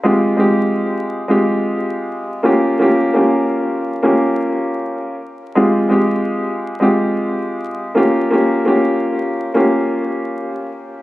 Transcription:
X:1
M:4/4
L:1/16
Q:"Swing 16ths" 1/4=87
K:Fm
V:1 name="Grand piano"
[A,CFG]2 [A,CFG]4- [A,CFG] [A,CFG]6 z [B,DFG]2 | [B,DFG]2 [B,DFG]4- [B,DFG] [B,DFG]6 z3 | [A,CFG]2 [A,CFG]4- [A,CFG] [A,CFG]6 z [B,DFG]2 | [B,DFG]2 [B,DFG]4- [B,DFG] [B,DFG]6 z3 |]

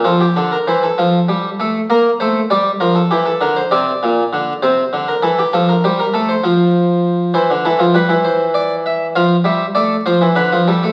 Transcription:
X:1
M:12/8
L:1/16
Q:3/8=66
K:F
V:1 name="Harpsichord"
A G A B c A6- A B2 c2 d2 B A G A B c | d6 c3 B A G A B c B A c6- c | c2 A2 =B2 c2 d2 e2 f2 e2 d2 c2 B2 A2 |]
V:2 name="Harpsichord" clef=bass
F,2 D,2 E,2 F,2 G,2 A,2 B,2 A,2 G,2 F,2 E,2 D,2 | C,2 B,,2 D,2 C,2 D,2 E,2 F,2 G,2 A,2 F,6 | E, D, E, F, G, E,6- E, F,2 G,2 A,2 F, E, D, F, G, A, |]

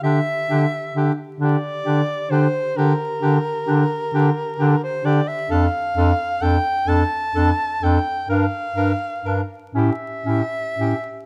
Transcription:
X:1
M:12/8
L:1/16
Q:3/8=44
K:Gdor
V:1 name="Soprano saxophone"
e4- e z d4 c2 B8- B c d e | f4 g2 a4 g2 f4- f z e6 |]
V:2 name="Alto saxophone"
G2 G2 G2 G2 G2 G2 G2 G2 G2 G2 G2 G2 | A2 A2 A2 A2 A2 A2 B2 B2 B2 G2 G2 G2 |]
V:3 name="Clarinet"
D2 D2 D2 D2 D2 D2 D2 D2 D2 D2 D2 D2 | D2 D2 D2 D2 D2 D2 D2 D2 D2 ^C2 C2 C2 |]
V:4 name="Bass clarinet" clef=bass
D,2 D,2 D,2 D,2 D,2 D,2 D,2 D,2 D,2 D,2 D,2 D,2 | F,,2 F,,2 F,,2 F,,2 F,,2 F,,2 G,,2 G,,2 G,,2 A,,2 A,,2 A,,2 |]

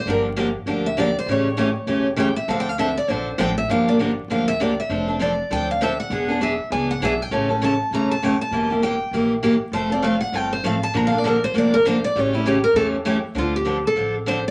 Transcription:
X:1
M:4/4
L:1/8
Q:"Swing" 1/4=198
K:Dm
V:1 name="Steel-string acoustic guitar"
B z4 e d c | ^c4 z2 g e | (3f g f e d c2 g e | f d z2 f e d e- |
e2 d2 g f e ^f- | ^f2 e2 ^g f e =g- | g2 a2 b a g a- | a2 g3 z3 |
c d f ^f g c =f a | (3b f d B c d B c d | ^c E G B A z3 | F G2 A2 z c z |]
V:2 name="Steel-string acoustic guitar"
[D,F,B,DG] z [D,F,B,DG] z [D,F,B,DG] z [D,F,B,DG] z | [^C,E,A,^CG] z [C,E,A,CG] z [C,E,A,CG] z [C,E,A,CG] z | [D,F,CDA] z [D,F,CDA] z [D,F,CDA] z [D,F,CDA] z | [D,F,B,DG] [B,DG] [D,F,B,DG] z [D,F,B,DG] z [D,F,B,DG] z |
[F,CDA] [CDA] [F,CDA] z [F,CDA] z [F,CDA] z | [E,=B,D^G] [B,DG] [E,B,DG] z [E,B,DG] z [E,B,DG] z | [^C,E,A,^CA] [A,CA] [C,E,A,CA] z [C,E,A,CA] z [C,E,A,CA] z | [E,B,EG] [B,EG] [E,B,EG] z [E,B,EG] z [E,B,EG] z |
[F,A,CFA] [CFA] [F,A,CFA] z [F,A,CFA] z [F,A,CFA] z | [D,F,B,DA] [B,DA] [D,F,B,DA] z [D,F,B,DA] z [D,F,B,DA] z | [^C,E,A,^CG] [A,CG] [C,E,A,CG] z [C,E,A,CG] z [C,E,A,CG] z | [D,F,CDA] z [D,F,CDA] z [D,F,CDA] z [D,F,CDA] z |]
V:3 name="Upright bass" clef=bass
G,,,4 D,,4 | A,,,4 E,,,4 | D,,4 B,,,2 A,,,2 | G,,,4 D,,4 |
F,,,4 D,,4 | E,,,4 ^C,,2 =B,,,2 | A,,,4 E,,,4 | E,,,4 B,,,4 |
F,,,4 G,,,2 A,,,2 | B,,,4 F,,,4 | A,,,4 E,,4 | D,,4 A,,,4 |]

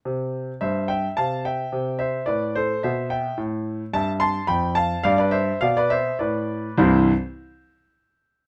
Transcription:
X:1
M:3/4
L:1/16
Q:1/4=107
K:C
V:1 name="Grand piano"
z4 [ce]2 [eg]2 [fa]2 [eg]2- | [eg]2 [ce]2 [Bd]2 [Ac]2 [ce]2 [eg]2 | z4 [ea]2 [ac']2 [gb]2 [fa]2 | [df] [Bd] [ce]2 [df] [Bd] [ce]2 [Bd]4 |
[C,,G,,E,G,CEc]2 z8 z2 |]
V:2 name="Grand piano" clef=bass
C,4 G,,4 C,4 | C,4 A,,4 B,,4 | A,,4 G,,4 F,,4 | G,,4 B,,4 A,,4 |
z12 |]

